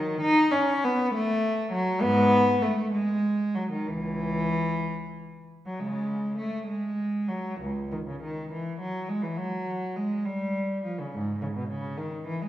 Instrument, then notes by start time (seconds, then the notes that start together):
cello
Already playing: D#3
0.21 D#4
0.51 C#4
0.84 B3
1.13 A3
1.72 F#3
2.02 G#2 B3
2.62 A3
2.92 G#3
3.55 F#3
3.71 D#3
3.87 C#2 E3
5.66 F#3
5.79 C#3 G#3
6.37 A3
6.66 G#3
7.28 F#3
7.60 C#2
7.92 D#3
8.07 C#3
8.23 D#3
8.51 E3
8.80 F#3
9.09 G#3
9.22 E3
9.37 F#3
9.96 G#3
10.25 G3
10.84 F3
10.99 C#3
11.13 G#2
11.42 C#3
11.56 B2
11.69 C#3
11.97 D#3
12.26 E3
12.41 G#3